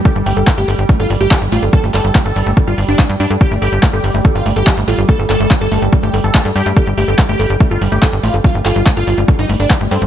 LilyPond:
<<
  \new Staff \with { instrumentName = "Supersaw synth" } { \time 4/4 \key c \dorian \tempo 4 = 143 g'16 r16 g'8 r16 g'8 r8 f'16 r16 g'8 r16 f'16 r16 | a'16 r16 a'8 r16 a'8 r8 f'16 r16 d'8 r16 d'16 r16 | g'16 r16 g'8 r16 g'8 r8 f'16 r16 g'8 r16 f'16 r16 | a'16 r16 a'8 r16 a'8 r8 g'16 r16 a'8 r16 g'16 r16 |
g'16 r16 g'8 r16 g'8 r8 f'16 r16 g'8 r16 f'16 r16 | f'16 r16 f'8 r16 f'8 r8 ees'16 r16 d'8 r16 c'16 r16 | }
  \new Staff \with { instrumentName = "Synth arpeggio sound" } { \time 4/4 \key c \dorian a'16 g16 a16 a'16 r16 a16 a'16 g16 a16 a'16 g16 a16 a'16 g16 a16 a'16 | g16 a16 a'16 g16 a16 a'16 g16 a16 a'16 g16 r16 d'16 a16 r16 g'16 a'16 | g16 a16 a'16 g16 a16 a'16 g16 a16 a'16 g16 a16 a'16 g16 a16 a'16 g16 | a16 a'16 g16 a16 a'16 g16 a16 a'16 g16 a16 a'16 g16 a16 a'16 g16 a16 |
a'16 g16 a16 a'16 g16 a16 a'16 g16 a16 a'16 g16 a16 a'16 g16 a16 a'16 | g16 a16 a'16 g16 a16 a'16 g16 a16 a'16 g16 a16 a'16 g16 a16 a'16 g16 | }
  \new Staff \with { instrumentName = "Ambient pad" } { \clef bass \time 4/4 \key c \dorian g1~ | g1~ | g1~ | g1~ |
g1~ | g1 | }
  \new Staff \with { instrumentName = "Analog synth bass" } { \clef bass \time 4/4 \key c \dorian r16 g,,16 g,,16 g,,16 r16 g,,16 g,,16 g,,16 r16 g,,16 g,,16 g,,16 r16 g,,16 a,,16 g,,16 | r16 g,,16 g,,16 g,,16 r16 g,,16 g,,16 g,,16 r16 g,,16 g,,16 g,,16 r16 g,16 g,16 g,16 | r16 g,,16 g,,16 g,,16 r16 g,,16 g,,16 g,,16 r16 g,,16 g,,16 g,,16 r16 g,,16 a,,16 g,,16 | r16 g,,16 g,,16 g,,16 r16 g,,16 g,,16 g,,16 r16 g,,16 g,,16 g,,16 r16 g,16 g,16 g,16 |
r16 g,,16 g,,16 g,,16 r16 g,,16 g,,16 g,,16 r16 g,,16 g,,16 g,,16 r16 g,,16 a,,16 g,,16 | r16 g,,16 g,,16 g,,16 r16 g,,16 g,,16 g,,16 r16 g,,16 g,,16 g,,16 r16 g,,16 g,16 g,,16 | }
  \new DrumStaff \with { instrumentName = "Drums" } \drummode { \time 4/4 <hh bd>16 hh16 hho16 hh16 <hc hh bd>16 hh16 hho16 hh16 <hh bd>16 hh16 hho16 hh16 <hc hh bd>16 hh16 hho16 hh16 | <hh bd>16 hh16 <hc hho>16 hh16 <hc hh bd>16 hh16 hho16 hh16 <hh bd>16 hh16 hho16 hh16 <hc hh bd>16 hh16 hho16 hh16 | <hh bd>16 hh16 hho16 hh16 <hc hh bd>16 hh16 hho16 hh16 <hh bd>16 hh16 hho16 hh16 <hc hh bd>16 hh16 hho16 hh16 | <hh bd>16 hh16 <hc hho>16 hh16 <hc hh bd>16 hh16 hho16 hh16 <hh bd>16 hh16 hho16 hh16 <hc hh bd>16 hh16 hho16 hh16 |
<hh bd>16 hh16 hho16 hh16 <hc hh bd>16 hh16 hho16 hh16 <hh bd>16 hh16 hho16 hh16 <hc hh bd>16 hh16 hho16 hh16 | <hh bd>16 hh16 <hc hho>16 hh16 <hc hh bd>16 hh16 hho16 hh16 <hh bd>16 hh16 hho16 hh16 <hc hh bd>16 hh16 hho16 hh16 | }
>>